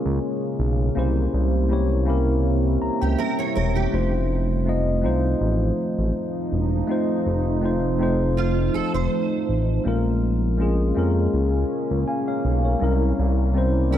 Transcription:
0.00 0.93 C#3 medium
0.00 0.93 G#3 medium
0.00 0.95 A#3 medium
0.00 3.88 A#3 medium
0.00 0.96 C#4 medium
0.00 0.98 F4 medium
0.00 0.98 G#4 medium
0.00 0.38 A#4 medium
0.00 0.98 C#5 loud
0.05 0.20 C#2 loud
0.59 0.90 B1 medium
0.95 1.28 C2 loud
0.95 3.90 C3 medium
0.95 3.90 G3 medium
0.95 1.59 A#3 medium
0.95 1.59 C#4 medium
0.95 3.90 C#4 medium
0.95 3.90 E4 medium
0.95 1.60 E4 medium
0.95 1.60 G4 medium
0.95 1.61 C5 medium
1.34 2.78 C2 loud
1.69 2.01 A#3 medium
1.69 2.02 C#4 medium
1.69 2.02 E4 medium
1.69 2.03 G4 medium
1.73 2.03 C#5 medium
2.06 3.32 A#3 medium
2.06 3.33 C#4 medium
2.06 3.33 E4 medium
2.06 3.34 G4 medium
2.10 3.34 A#4 medium
2.82 2.90 C#2 soft
2.82 3.00 A#5 medium
3.01 3.16 C#2 loud
3.01 3.18 G4 medium
3.01 3.17 G5 medium
3.18 3.37 A#4 medium
3.18 3.53 E5 medium
3.39 3.55 C#5 medium
3.55 3.87 E1 medium
3.55 3.74 A#4 medium
3.55 3.90 C#5 medium
3.75 4.11 G4 medium
3.91 5.06 F1 loud
3.91 9.81 F3 medium
3.91 4.55 A3 medium
3.91 9.81 A3 medium
3.91 4.55 C4 medium
3.91 9.81 D#4 medium
3.91 4.56 D#4 medium
3.91 4.56 F4 medium
3.91 4.57 C5 loud
4.65 4.97 A3 medium
4.65 4.98 C4 medium
4.65 4.98 D#4 medium
4.65 4.99 F4 medium
4.69 4.99 D#5 medium
5.02 5.35 C2 medium
5.02 6.28 A3 medium
5.02 6.29 C4 medium
5.02 6.29 D#4 medium
5.02 6.30 F4 medium
5.02 6.30 C5 medium
5.41 5.72 A1 medium
5.98 6.12 A1 medium
6.52 6.83 E1 medium
6.87 7.51 A3 medium
6.87 7.52 C4 medium
6.87 7.52 D#4 medium
6.87 7.53 F4 medium
6.87 7.53 C5 medium
7.26 8.70 F1 loud
7.62 7.94 A3 medium
7.62 7.94 C4 medium
7.62 7.95 D#4 medium
7.62 7.95 F4 medium
7.62 7.96 C5 medium
7.99 9.25 A3 medium
7.99 9.26 C4 medium
7.99 9.26 D#4 medium
7.99 9.27 F4 medium
8.03 9.27 C5 medium
8.37 8.72 F4 medium
8.74 8.82 F1 soft
8.74 8.93 A4 medium
8.94 9.09 F1 medium
8.94 9.81 C5 medium
9.49 9.80 A1 medium
9.84 10.92 A#1 loud
9.84 10.48 G#3 medium
9.84 12.78 G#3 medium
9.84 10.48 A#3 medium
9.84 13.98 A#3 medium
9.84 12.78 C#4 medium
9.84 10.49 C#4 medium
9.84 10.49 F4 medium
9.84 10.50 A#4 loud
10.58 10.90 G#3 medium
10.58 10.91 A#3 medium
10.58 10.91 C#4 medium
10.58 10.92 F4 medium
10.58 10.92 G#4 medium
10.95 11.28 F2 medium
10.95 12.21 G#3 medium
10.95 12.22 A#3 medium
10.95 12.22 C#4 medium
10.95 12.23 F4 medium
10.95 12.08 A#4 medium
11.34 11.65 C#2 medium
11.91 12.05 C#2 medium
12.08 12.26 F5 medium
12.08 12.26 G#5 medium
12.28 12.63 C#5 medium
12.28 12.63 F5 medium
12.45 12.76 B1 medium
12.65 12.82 A#4 medium
12.65 13.00 C#5 medium
12.79 13.13 C2 loud
12.79 13.44 G3 medium
12.79 13.44 C4 medium
12.79 13.45 C#4 medium
12.79 13.45 E4 medium
12.79 13.46 A#4 medium
13.19 13.98 C2 loud
13.54 13.86 G3 medium
13.54 13.87 C4 medium
13.54 13.87 C#4 medium
13.54 13.88 E4 medium
13.58 13.88 C5 medium
13.91 13.98 G3 medium
13.91 13.98 C4 medium
13.91 13.98 C#4 medium
13.91 13.98 E4 medium

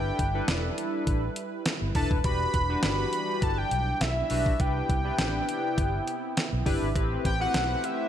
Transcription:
0.00 2.22 G3 medium
0.00 0.19 D4 medium
0.00 0.19 E4 medium
0.00 2.22 E4 medium
0.00 0.19 A4 medium
0.00 0.19 B4 medium
0.00 2.22 B4 medium
0.00 0.45 G5 medium
0.19 0.39 G1 medium
0.19 kick medium
0.19 closed hi-hat medium
0.34 1.22 D4 medium
0.34 1.22 E4 medium
0.34 1.22 A4 medium
0.34 1.23 B4 loud
0.48 0.68 E1 loud
0.48 snare loud
0.48 closed hi-hat medium
0.78 closed hi-hat medium
1.07 1.27 A1 loud
1.07 kick loud
1.07 closed hi-hat medium
1.36 closed hi-hat medium
1.66 snare loud
1.66 closed hi-hat loud
1.82 1.91 G1 medium
1.95 2.06 E1 loud
1.95 2.18 D4 medium
1.95 2.18 E4 medium
1.95 2.18 A4 medium
1.95 2.18 B4 loud
1.95 2.09 A5 loud
1.95 kick medium
1.95 open hi-hat medium
2.11 2.20 D#1 medium
2.11 kick medium
2.24 2.45 E1 loud
2.24 4.58 E3 medium
2.24 4.57 G3 medium
2.24 2.58 D4 medium
2.24 4.58 D4 medium
2.24 2.58 F#4 medium
2.24 2.58 G4 medium
2.24 2.58 B4 medium
2.24 2.80 B5 loud
2.24 kick loud
2.24 closed hi-hat medium
2.54 2.74 E1 loud
2.54 kick medium
2.54 closed hi-hat medium
2.69 3.57 D4 medium
2.69 3.57 F#4 medium
2.69 3.58 G4 medium
2.69 3.58 B4 medium
2.83 3.04 G1 medium
2.83 3.44 B5 loud
2.83 snare loud
2.83 closed hi-hat loud
3.13 closed hi-hat medium
3.42 3.63 G1 medium
3.42 3.59 A5 loud
3.42 kick loud
3.42 closed hi-hat medium
3.58 4.03 G5 loud
3.71 3.92 B1 medium
3.71 closed hi-hat medium
4.01 4.21 B1 loud
4.01 4.62 E5 medium
4.01 snare loud
4.01 closed hi-hat medium
4.30 4.51 B1 medium
4.30 4.53 D4 medium
4.30 4.53 F#4 medium
4.30 4.53 G4 medium
4.30 4.53 B4 loud
4.30 open hi-hat medium
4.46 kick loud
4.59 4.80 C2 loud
4.59 6.93 C3 medium
4.59 6.93 B3 medium
4.59 4.93 D4 medium
4.59 4.93 E4 medium
4.59 6.93 E4 loud
4.59 4.93 G4 medium
4.59 4.93 B4 medium
4.59 6.66 G5 loud
4.59 kick loud
4.59 closed hi-hat medium
4.89 5.10 C2 loud
4.89 kick medium
4.89 closed hi-hat medium
5.04 5.93 D4 medium
5.04 5.93 E4 medium
5.04 5.93 G4 medium
5.04 5.93 B4 medium
5.19 5.39 A1 loud
5.19 snare loud
5.19 closed hi-hat loud
5.49 closed hi-hat medium
5.78 5.98 G1 loud
5.78 kick loud
5.78 closed hi-hat medium
6.08 closed hi-hat medium
6.37 snare loud
6.37 closed hi-hat loud
6.53 6.62 B1 medium
6.66 6.77 G1 medium
6.66 6.88 D4 loud
6.66 6.88 E4 loud
6.66 6.88 G4 medium
6.66 6.89 B4 loud
6.66 kick medium
6.66 open hi-hat medium
6.82 6.92 G#1 medium
6.95 7.16 A1 loud
6.95 8.09 A3 medium
6.95 7.28 C4 medium
6.95 8.09 C4 medium
6.95 7.28 E4 medium
6.95 7.29 G4 medium
6.95 8.09 G4 medium
6.95 7.29 B4 loud
6.95 kick loud
6.95 closed hi-hat medium
7.25 7.45 A1 loud
7.25 7.40 G5 loud
7.25 kick medium
7.25 closed hi-hat medium
7.40 7.46 B3 medium
7.40 8.09 E4 medium
7.40 8.09 G4 medium
7.40 8.09 B4 loud
7.40 7.86 F#5 loud
7.46 8.09 C4 medium
7.54 7.75 B1 loud
7.54 snare loud
7.54 closed hi-hat loud
7.84 8.09 E5 loud
7.84 closed hi-hat medium

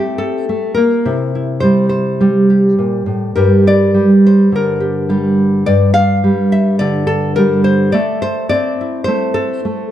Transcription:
0.00 0.48 A3 medium
0.00 0.47 C4 medium
0.00 1.02 E4 medium
0.00 0.76 G4 loud
0.00 0.17 A4 medium
0.18 0.74 A4 medium
0.49 0.77 A3 medium
0.74 1.05 A#3 medium
0.74 2.18 A#4 medium
1.05 2.78 C3 medium
1.05 1.34 E4 medium
1.35 3.33 E4 soft
1.60 2.20 G3 medium
1.60 1.88 C5 medium
1.89 3.35 C5 medium
2.20 3.36 G3 medium
2.20 2.49 G4 soft
2.50 3.35 G4 soft
2.79 3.06 A#2 medium
3.06 3.35 A2 medium
3.36 5.65 G2 medium
3.36 3.94 G3 medium
3.36 4.79 G4 soft
3.36 4.23 A#4 medium
3.67 4.24 D5 loud
3.94 5.08 G3 medium
4.27 5.11 C5 medium
4.52 5.67 D3 medium
4.52 5.97 A#4 medium
4.80 5.09 G4 soft
5.09 6.23 G3 medium
5.09 5.63 G4 medium
5.66 7.94 G2 medium
5.66 5.93 D5 loud
5.94 6.51 F5 loud
6.24 7.37 G3 medium
6.52 6.79 E5 medium
6.79 7.93 D3 medium
6.79 7.65 D5 loud
7.07 7.35 A4 loud
7.36 7.94 G3 medium
7.36 7.64 A#4 loud
7.64 7.93 C5 loud
7.92 9.07 A3 medium
7.92 8.21 D5 medium
8.22 8.49 C5 loud
8.49 9.64 C4 medium
8.49 9.04 D5 loud
8.81 9.91 E4 soft
9.04 9.64 A3 medium
9.04 9.91 C5 loud
9.34 9.90 A4 medium
9.65 9.91 A3 medium

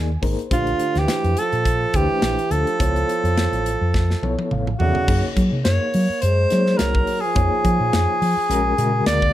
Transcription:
0.00 0.16 D#2 medium
0.00 0.11 A#3 medium
0.00 0.11 D#4 medium
0.00 0.11 G#4 medium
0.00 0.11 D5 medium
0.00 0.20 G#5 medium
0.22 0.35 G#1 medium
0.22 0.45 A#3 medium
0.22 0.45 D#4 medium
0.22 0.45 G#4 medium
0.22 0.45 A#4 medium
0.22 0.49 C5 medium
0.22 kick medium
0.22 open hi-hat medium
0.39 closed hi-hat soft
0.51 0.73 A#1 medium
0.51 1.40 A3 medium
0.51 1.40 D4 medium
0.51 1.00 F4 medium
0.51 1.40 G4 medium
0.51 1.40 C5 medium
0.51 kick loud
0.51 closed hi-hat medium
0.55 1.00 D3 medium
0.67 closed hi-hat soft
0.79 muted fingered electric bass stroke soft
0.79 closed hi-hat soft
0.95 1.05 D2 medium
0.95 1.40 E3 medium
0.95 1.41 G4 medium
0.95 snare soft
0.95 closed hi-hat soft
1.08 snare medium
1.08 closed hi-hat medium
1.24 1.34 F2 medium
1.24 closed hi-hat soft
1.37 1.97 F3 medium
1.37 1.98 A4 loud
1.37 closed hi-hat medium
1.52 1.85 A#2 medium
1.52 closed hi-hat soft
1.65 kick medium
1.65 closed hi-hat medium
1.94 2.06 D2 medium
1.94 2.55 E3 medium
1.94 2.40 A3 medium
1.94 2.40 D4 medium
1.94 2.40 G4 medium
1.94 2.53 G4 medium
1.94 2.40 C5 medium
1.94 kick medium
1.94 closed hi-hat medium
2.22 2.35 A#1 medium
2.22 snare loud
2.22 closed hi-hat medium
2.39 closed hi-hat soft
2.51 2.63 D2 medium
2.51 4.52 F3 medium
2.51 2.74 A3 soft
2.51 2.74 D4 soft
2.51 2.74 G4 medium
2.51 4.51 A4 medium
2.51 2.75 A4 medium
2.51 closed hi-hat medium
2.67 closed hi-hat soft
2.79 3.02 C#2 medium
2.79 3.69 B3 medium
2.79 3.69 E4 medium
2.79 3.69 A4 medium
2.79 3.69 C#5 medium
2.79 kick loud
2.79 closed hi-hat medium
2.96 closed hi-hat soft
3.09 closed hi-hat medium
3.24 3.46 F2 medium
3.24 closed hi-hat soft
3.38 snare medium
3.38 closed hi-hat medium
3.52 3.74 A1 medium
3.52 closed hi-hat soft
3.66 closed hi-hat medium
3.81 4.13 F2 medium
3.94 kick medium
3.94 snare medium
4.10 snare soft
4.22 4.35 B1 medium
4.22 4.68 B3 medium
4.22 4.68 E4 medium
4.22 4.68 A4 medium
4.22 4.69 C#5 medium
4.22 high tom medium
4.39 high tom medium
4.51 4.73 A1 medium
4.51 4.78 F5 medium
4.51 mid tom medium
4.67 mid tom medium
4.79 4.92 E2 medium
4.79 5.33 C#3 medium
4.79 5.03 B3 medium
4.79 5.03 E4 medium
4.79 5.32 F#4 medium
4.79 5.03 A4 medium
4.79 5.07 D5 medium
4.79 5.03 E5 medium
4.79 floor tom medium
4.95 floor tom medium
5.08 5.20 F#2 medium
5.08 5.97 A#3 medium
5.08 5.97 D#4 medium
5.08 5.97 G#4 medium
5.08 5.98 C#5 medium
5.08 kick loud
5.08 crash medium
5.37 5.49 F#3 loud
5.37 kick medium
5.37 closed hi-hat medium
5.52 5.62 C3 medium
5.64 5.77 F#2 medium
5.64 6.26 A#3 medium
5.64 6.22 C#5 medium
5.64 snare medium
5.64 closed hi-hat medium
5.94 6.06 F#3 medium
5.94 open hi-hat medium
6.09 muted fingered electric bass stroke soft
6.21 6.45 F#2 medium
6.21 6.82 G#3 medium
6.21 6.79 C5 medium
6.21 closed hi-hat medium
6.50 6.74 F#3 medium
6.50 7.18 A#3 medium
6.50 7.18 D#4 medium
6.50 7.18 G#4 medium
6.50 7.19 C#5 medium
6.50 snare soft
6.50 closed hi-hat medium
6.66 snare soft
6.77 7.02 C2 medium
6.77 7.27 F#3 medium
6.77 7.22 A#4 medium
6.77 snare medium
6.77 closed hi-hat medium
6.95 kick medium
7.07 open hi-hat medium
7.21 9.05 G#4 medium
7.25 8.51 F3 medium
7.35 7.48 F2 medium
7.35 8.24 A#3 medium
7.35 8.25 D#4 medium
7.35 8.25 G#4 medium
7.35 8.25 C#5 medium
7.35 kick loud
7.35 closed hi-hat medium
7.65 7.77 F3 medium
7.65 kick medium
7.65 closed hi-hat medium
7.80 7.90 A#2 medium
7.93 8.05 F2 medium
7.93 snare loud
7.93 closed hi-hat medium
8.22 8.34 F3 medium
8.22 open hi-hat medium
8.36 muted fingered electric bass stroke soft
8.49 8.72 A#1 medium
8.49 8.73 G#3 medium
8.49 8.73 C#4 medium
8.49 8.73 F#4 medium
8.49 8.73 A#4 loud
8.49 closed hi-hat medium
8.78 9.00 A#2 medium
8.78 9.33 C#3 medium
8.78 9.33 G#3 medium
8.78 9.33 F#4 medium
8.78 9.33 A#4 medium
8.78 closed hi-hat medium
9.06 9.29 D2 medium
9.06 9.33 A#3 medium
9.06 9.33 D5 loud
9.06 snare loud
9.06 closed hi-hat medium
9.22 kick medium

